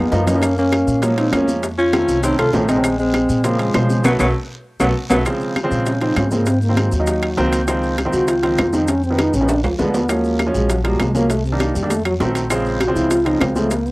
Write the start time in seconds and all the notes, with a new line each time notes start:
Already playing: F2 G#3 B3
0.11 F#2 F3 A#3 B3 D#4, high bongo, low bongo, low timbale, short guiro, maracas
0.26 F3 A#3 B3 C#4 D#4, high bongo, low conga, high timbale, short guiro, maracas
0.34 F3 A#3 B3 D#4
0.42 high bongo, high conga, high timbale, long guiro, claves, maracas
0.57 A#3 C#4, high conga, maracas
0.72 high bongo, high conga, high timbale, low timbale, short guiro, claves, maracas
0.87 A#2, high bongo, high conga, short guiro, maracas
1.02 F3 F#3 G#3 A#3 C#4, high bongo, high conga, high timbale, long guiro, maracas
1.17 C4 D#4, high bongo, high conga, high timbale, maracas
1.32 F2 F3 G#3 A#3 C#4, high bongo, low bongo, high conga, high timbale, low timbale, short guiro, claves, maracas
1.48 high bongo, high conga, short guiro, maracas
1.62 high bongo, high conga, high timbale, long guiro, maracas
1.78 C#4 F4, high conga, maracas
1.93 D#3 A3 C4 C#4, high bongo, high conga, high timbale, low timbale, short guiro, claves, maracas
2.08 C2, high bongo, short guiro, maracas
2.23 D#3 A3 C4 C#4 D#4, high bongo, high conga, high timbale, long guiro, maracas
2.38 C2 F4 A4, high bongo, high conga, high timbale, claves, maracas
2.53 A#1 D#3 F3 A3 C4 C#4, high bongo, low bongo, high conga, low timbale, short guiro, maracas
2.68 D#3 G#3 A3 C4 D#4, high bongo, high conga, high timbale, short guiro, maracas
2.76 D#3 A3 C4 C#4
2.84 high bongo, high conga, high timbale, long guiro, claves, maracas
2.99 G#3 C4, high conga, maracas
3.14 high bongo, high conga, high timbale, low timbale, short guiro, claves, maracas
3.29 A#2, high bongo, high conga, short guiro, maracas
3.44 C#3 F3 G#3 A#3 C4, high bongo, high conga, high timbale, long guiro, maracas
3.59 F3 G#3, high bongo, high conga, high timbale, maracas
3.74 B2 C#3 F3 G#3 C5, high bongo, low bongo, high conga, high timbale, low timbale, short guiro, claves, maracas
3.89 high bongo, high conga, short guiro, maracas
4.04 B1 F#3 A3 B3, high bongo, high conga, high timbale, long guiro, claves, maracas
4.19 B1 F#3 A3 B3, high bongo, high conga, high timbale, long guiro, claves, maracas
4.80 B1 F#3 A3 B3, high bongo, high conga, high timbale, long guiro, claves, maracas
5.10 B1 F#3 A3 B3, high bongo, high conga, high timbale, long guiro, claves, maracas
5.25 C#3 F3 G#3 C4, high bongo, high conga, high timbale, long guiro, claves, maracas
5.41 high conga, maracas
5.56 high bongo, high conga, high timbale, low timbale, short guiro, claves, maracas
5.63 C#3 F3 G#3 C4
5.71 A#2, high bongo, high conga, short guiro, maracas
5.86 C#4, high bongo, high conga, high timbale, long guiro, maracas
6.01 C#3 F3 G#3 C4 D#4, high bongo, high conga, high timbale, maracas
6.16 G#2 C#4, high bongo, low bongo, high conga, high timbale, low timbale, short guiro, claves, maracas
6.31 C#3 F3 G#3 A#3 C4, high bongo, high conga, short guiro, maracas
6.46 C4, high bongo, high conga, high timbale, long guiro, maracas
6.62 A#3, high conga, maracas
6.69 D#3 F#3 A#3 C4
6.77 G#3, high bongo, high conga, high timbale, low timbale, short guiro, claves, maracas
6.92 D#2 F#3, high bongo, short guiro, maracas
6.99 D#3 F#3 A#3 D#4
7.07 high bongo, high conga, high timbale, long guiro, maracas
7.22 high bongo, high conga, high timbale, claves, maracas
7.37 C#2 D#3 F#3 A#3 C4, high bongo, low bongo, high conga, low timbale, short guiro, maracas
7.53 high bongo, high conga, high timbale, short guiro, maracas
7.68 D#3 F3 G#3 C4, high bongo, high conga, high timbale, long guiro, claves, maracas
7.83 high conga, maracas
7.98 high bongo, high conga, high timbale, low timbale, short guiro, claves, maracas
8.05 D#3 F3 G#3 C4
8.13 C#2 F#4, high bongo, high conga, short guiro, maracas
8.28 F4, high bongo, high conga, high timbale, long guiro, maracas
8.43 D#3 F3 G#3 C4, high bongo, high conga, high timbale, maracas
8.58 F2, high bongo, low bongo, high conga, high timbale, low timbale, short guiro, claves, maracas
8.73 D#3 F3 G#3 C4 D#4, high bongo, high conga, short guiro, maracas
8.88 C#4, high bongo, high conga, high timbale, long guiro, maracas
9.03 C4, high conga, maracas
9.10 D#3 F3 G#3 B3
9.18 D#4, high bongo, high conga, high timbale, low timbale, short guiro, claves, maracas
9.33 A#1 C#4, high bongo, short guiro, maracas
9.41 D#3 F3 G#3 B3
9.48 D4, high bongo, high conga, high timbale, long guiro, maracas
9.64 D2 F3, high bongo, high conga, low timbale, claves, maracas
9.79 D#2 D3 F3 G#3 B3, high bongo, low bongo, high conga, low timbale, short guiro, maracas
9.94 B3, high bongo, high conga, low timbale, short guiro, maracas
10.09 F3 F#3 G#3 A#3 C#4, high bongo, high conga, high timbale, long guiro, claves, maracas
10.24 high conga, maracas
10.39 high bongo, high conga, high timbale, low timbale, short guiro, claves, maracas
10.46 F3 F#3 G#3 C#4
10.54 A#1 G#3, high bongo, high conga, short guiro, maracas
10.69 F#3, high bongo, high conga, high timbale, long guiro, maracas
10.84 F3 F#3 G3 G#3 A#3, high bongo, high conga, high timbale, maracas
11.00 C2 G#3, high bongo, low bongo, high conga, high timbale, low timbale, short guiro, claves, maracas
11.14 F3 F#3 G#3 A#3 C#4, high bongo, high conga, short guiro, maracas
11.30 A3, high bongo, high conga, high timbale, long guiro, maracas
11.45 C3, high conga, maracas
11.52 D#3 G3 A#3 D4
11.60 D#3, high bongo, high conga, high timbale, low timbale, short guiro, claves, maracas
11.75 F2 G3, high bongo, short guiro, maracas
11.82 D#3 G3 A#3 D4
11.90 A3, high bongo, high conga, high timbale, long guiro, maracas
12.05 F#3, high bongo, high conga, high timbale, claves, maracas
12.20 A#1 D#3 F#3 A3 C4, high bongo, low bongo, high conga, low timbale, short guiro, maracas
12.35 high bongo, high conga, high timbale, short guiro, maracas
12.50 C#3 F3 G#3 C4, high bongo, high conga, high timbale, long guiro, claves, maracas
12.65 high conga, maracas
12.80 F#4, high bongo, high conga, high timbale, low timbale, short guiro, claves, maracas
12.87 C#3 F3 G#3 C4
12.95 C#2 E4, high bongo, high conga, short guiro, maracas
13.10 F4, high bongo, high conga, high timbale, long guiro, maracas
13.25 C#3 F3 G#3 C4 D#4, high bongo, high conga, high timbale, maracas
13.40 C#2 C4, high bongo, low bongo, high conga, high timbale, low timbale, short guiro, claves, maracas
13.55 C#3 F3 G#3 A3 C4, high bongo, high conga, short guiro, maracas
13.71 A#3, high bongo, high conga, high timbale, long guiro, maracas
13.86 B3, high conga, maracas